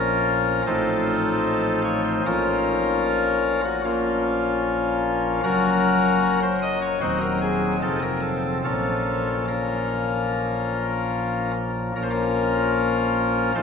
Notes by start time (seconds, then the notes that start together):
Already playing: A#1 A#2 F3 C#4 F4 A#4
0.66 A1 A2 F3 C4 D#4 F4 A4 C5
1.84 C#5
2.05 C5
2.26 A#1 A#2 F3 C#4 F4 A#4
3.65 F#4
3.85 A#3 C#4 F4
5.44 F#1 F#2 F#3 C#4 F#4 A#4
6.42 C5
6.62 D#5
6.82 C#5
7.01 D#1 D#2 F#3 C4 D#4 F#4 C5
7.21 A#4
7.41 G#4
7.82 F1 F2 F3 C4 D#4 F4 A4
8.02 A#4
8.22 A4
8.64 A#1 A#2 F3 A#3 C#4 F4 A4
9.48 C#4 F4 A#4
11.96 A#1 A#2 F3 A#3 C#4 A#4
12.03 C5
12.10 C#4 F4 A#4
13.55 A1 A2 F3 D#4 F4 A4 C5